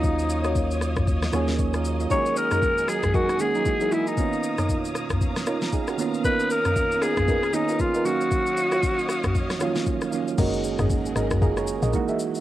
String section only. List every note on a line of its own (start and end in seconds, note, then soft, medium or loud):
0.00 2.08 C#5 medium
0.00 3.62 D#5 medium
0.00 2.07 F5 medium
0.00 3.62 D#6 medium
2.11 3.64 A#4 medium
2.11 4.16 G#5 medium
3.66 4.17 F#3 medium
3.66 4.17 A#4 medium
3.66 4.17 E5 medium
3.66 5.96 D#6 medium
4.18 5.97 B2 medium
4.18 5.97 C#5 medium
4.18 8.02 F5 medium
4.18 8.02 A#5 medium
5.99 8.03 C#4 medium
5.99 8.03 A#4 medium
5.99 8.03 D#6 medium
8.05 10.36 C#5 medium
8.05 10.36 D#5 medium
8.05 10.36 F5 medium
8.05 10.36 D#6 medium
10.38 11.92 F#3 medium
10.38 11.92 D#4 medium
10.38 11.92 G#4 medium
10.38 11.92 A#4 medium
11.93 12.41 E3 medium
11.93 12.41 F#3 medium
11.93 12.41 A#3 medium